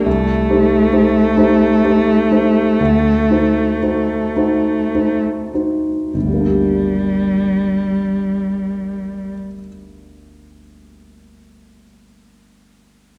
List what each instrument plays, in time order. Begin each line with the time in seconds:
0.06 grand piano C2, cello A3
0.50 grand piano D#4 G4 C5
0.93 grand piano D#4 G4 C5
1.37 grand piano D#4 G4 C5
1.84 grand piano D#4 G4 C5
2.31 grand piano D#4 G4 C5
2.80 grand piano D2
3.31 grand piano D#4 F#4 C5
3.83 grand piano D#4 F#4 C5
4.36 grand piano D#4 F#4 C5
4.95 grand piano D#4 F#4 C5
5.54 grand piano D#4 F#4 C5
6.14 grand piano G1, cello G3
6.20 grand piano D2
6.27 grand piano G3
6.34 grand piano A#3
6.41 grand piano D4
6.47 grand piano G4